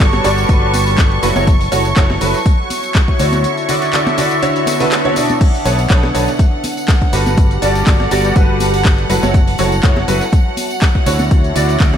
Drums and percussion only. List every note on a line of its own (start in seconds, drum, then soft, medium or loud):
0.00 kick loud
0.00 snare loud
0.00 clap loud
0.00 closed hi-hat medium
0.00 tambourine soft
0.13 cross-stick medium
0.13 snare medium
0.13 high conga medium
0.24 closed hi-hat medium
0.24 open hi-hat loud
0.24 tambourine medium
0.38 closed hi-hat medium
0.38 tambourine medium
0.38 tambourine soft
0.49 kick loud
0.49 closed hi-hat medium
0.49 tambourine soft
0.74 closed hi-hat medium
0.74 open hi-hat loud
0.74 tambourine medium
0.74 tambourine loud
0.74 high conga medium
0.86 open hi-hat medium
0.86 tambourine medium
0.86 tambourine soft
0.98 kick loud
0.98 cross-stick medium
0.98 snare loud
0.98 clap loud
0.98 closed hi-hat medium
0.98 tambourine soft
1.11 closed hi-hat soft
1.23 closed hi-hat medium
1.23 open hi-hat loud
1.23 tambourine medium
1.36 closed hi-hat medium
1.36 tambourine medium
1.36 tambourine soft
1.36 high conga medium
1.47 kick loud
1.47 closed hi-hat medium
1.47 tambourine soft
1.61 open hi-hat medium
1.61 tambourine soft
1.72 closed hi-hat medium
1.72 open hi-hat loud
1.72 tambourine medium
1.85 closed hi-hat medium
1.85 tambourine medium
1.85 tambourine soft
1.96 kick loud
1.96 snare loud
1.96 clap loud
1.96 closed hi-hat medium
1.96 tambourine soft
2.10 cross-stick medium
2.10 snare medium
2.10 high conga medium
2.21 closed hi-hat medium
2.21 open hi-hat loud
2.21 tambourine medium
2.34 snare medium
2.34 closed hi-hat medium
2.34 tambourine soft
2.46 kick loud
2.46 closed hi-hat medium
2.46 tambourine soft
2.70 closed hi-hat medium
2.70 open hi-hat loud
2.70 tambourine medium
2.70 high conga medium
2.83 closed hi-hat medium
2.83 tambourine soft
2.95 kick loud
2.95 cross-stick medium
2.95 snare loud
2.95 clap loud
2.95 closed hi-hat medium
2.95 tambourine soft
3.08 kick medium
3.08 closed hi-hat soft
3.19 closed hi-hat medium
3.19 open hi-hat loud
3.19 tambourine medium
3.32 snare soft
3.32 closed hi-hat medium
3.32 tambourine soft
3.32 high conga medium
3.44 closed hi-hat medium
3.44 tambourine soft
3.57 closed hi-hat soft
3.57 tambourine soft
3.69 closed hi-hat medium
3.69 open hi-hat loud
3.69 tambourine medium
3.82 snare medium
3.82 closed hi-hat medium
3.82 tambourine soft
3.93 snare loud
3.93 clap loud
3.93 closed hi-hat medium
3.93 tambourine soft
4.07 cross-stick medium
4.07 snare medium
4.07 tambourine soft
4.07 high conga loud
4.18 closed hi-hat medium
4.18 open hi-hat loud
4.18 tambourine medium
4.31 closed hi-hat medium
4.31 tambourine soft
4.43 closed hi-hat medium
4.43 tambourine soft
4.56 closed hi-hat soft
4.56 tambourine soft
4.67 snare loud
4.67 closed hi-hat medium
4.67 open hi-hat loud
4.67 tambourine medium
4.67 high conga medium
4.80 snare loud
4.80 closed hi-hat medium
4.80 open hi-hat medium
4.80 tambourine soft
4.91 cross-stick medium
4.91 snare loud
4.91 clap loud
4.91 closed hi-hat medium
4.91 tambourine soft
5.05 closed hi-hat soft
5.16 closed hi-hat medium
5.16 open hi-hat loud
5.16 tambourine medium
5.30 closed hi-hat medium
5.30 tambourine soft
5.30 high conga loud
5.41 kick loud
5.41 closed hi-hat medium
5.41 crash medium
5.41 tambourine soft
5.54 open hi-hat medium
5.54 tambourine soft
5.65 closed hi-hat medium
5.65 open hi-hat loud
5.65 tambourine medium
5.78 closed hi-hat medium
5.78 tambourine medium
5.78 tambourine soft
5.90 kick loud
5.90 snare loud
5.90 clap loud
5.90 closed hi-hat medium
5.90 tambourine soft
6.03 cross-stick medium
6.03 snare medium
6.03 high conga loud
6.15 closed hi-hat medium
6.15 open hi-hat loud
6.15 tambourine medium
6.28 snare medium
6.28 closed hi-hat medium
6.28 tambourine medium
6.28 tambourine soft
6.39 kick loud
6.39 closed hi-hat medium
6.39 tambourine soft
6.64 closed hi-hat medium
6.64 open hi-hat loud
6.64 tambourine medium
6.64 high conga medium
6.77 closed hi-hat medium
6.77 tambourine soft
6.77 tambourine medium
6.88 kick loud
6.88 cross-stick medium
6.88 snare loud
6.88 clap loud
6.88 closed hi-hat medium
6.88 tambourine soft
7.02 kick medium
7.02 closed hi-hat soft
7.13 closed hi-hat medium
7.13 open hi-hat loud
7.13 tambourine medium
7.26 snare soft
7.26 closed hi-hat medium
7.26 tambourine soft
7.26 tambourine medium
7.26 high conga medium
7.37 kick loud
7.37 closed hi-hat medium
7.37 tambourine soft
7.51 closed hi-hat soft
7.51 tambourine soft
7.62 closed hi-hat medium
7.62 open hi-hat loud
7.62 tambourine loud
7.62 tambourine medium
7.75 snare medium
7.75 closed hi-hat medium
7.75 tambourine medium
7.75 tambourine soft
7.87 kick loud
7.87 snare loud
7.87 clap loud
7.87 closed hi-hat medium
7.87 tambourine soft
8.00 cross-stick medium
8.00 snare medium
8.00 high conga loud
8.11 closed hi-hat medium
8.11 open hi-hat loud
8.11 tambourine loud
8.11 tambourine medium
8.24 closed hi-hat medium
8.24 tambourine soft
8.36 kick loud
8.36 closed hi-hat medium
8.36 tambourine soft
8.60 closed hi-hat medium
8.60 open hi-hat loud
8.60 tambourine loud
8.60 tambourine medium
8.60 high conga medium
8.74 open hi-hat medium
8.74 tambourine medium
8.74 tambourine soft
8.85 kick loud
8.85 cross-stick medium
8.85 snare loud
8.85 clap loud
8.85 closed hi-hat medium
8.85 tambourine soft
8.98 closed hi-hat soft
9.10 closed hi-hat medium
9.10 open hi-hat loud
9.10 tambourine medium
9.23 closed hi-hat medium
9.23 tambourine medium
9.23 tambourine soft
9.23 high conga loud
9.34 kick loud
9.34 closed hi-hat medium
9.34 tambourine soft
9.48 open hi-hat medium
9.48 tambourine soft
9.58 closed hi-hat medium
9.58 open hi-hat loud
9.58 tambourine loud
9.58 tambourine medium
9.72 closed hi-hat medium
9.72 tambourine medium
9.72 tambourine soft
9.83 kick loud
9.83 snare loud
9.83 clap loud
9.83 closed hi-hat medium
9.83 tambourine soft
9.96 cross-stick medium
9.96 snare medium
9.96 high conga medium
10.08 closed hi-hat medium
10.08 open hi-hat loud
10.08 tambourine loud
10.08 tambourine medium
10.21 snare medium
10.21 closed hi-hat medium
10.21 tambourine medium
10.21 tambourine soft
10.33 kick loud
10.33 closed hi-hat medium
10.33 tambourine soft
10.57 closed hi-hat medium
10.57 open hi-hat loud
10.57 tambourine loud
10.57 tambourine medium
10.57 high conga medium
10.70 closed hi-hat medium
10.70 tambourine medium
10.70 tambourine soft
10.81 kick loud
10.81 cross-stick medium
10.81 snare loud
10.81 clap loud
10.81 closed hi-hat medium
10.81 tambourine soft
10.95 kick medium
10.95 closed hi-hat soft
11.06 closed hi-hat medium
11.06 open hi-hat loud
11.06 tambourine loud
11.06 tambourine medium
11.19 snare soft
11.19 closed hi-hat medium
11.19 tambourine medium
11.19 tambourine soft
11.19 high conga loud
11.31 kick loud
11.31 closed hi-hat medium
11.31 tambourine soft
11.44 closed hi-hat soft
11.44 tambourine soft
11.56 closed hi-hat medium
11.56 open hi-hat loud
11.56 tambourine medium
11.69 snare medium
11.69 closed hi-hat medium
11.69 tambourine soft
11.69 tambourine medium
11.80 kick loud
11.80 snare loud
11.80 clap loud
11.80 closed hi-hat medium
11.80 tambourine soft
11.94 cross-stick medium
11.94 snare medium
11.94 high conga medium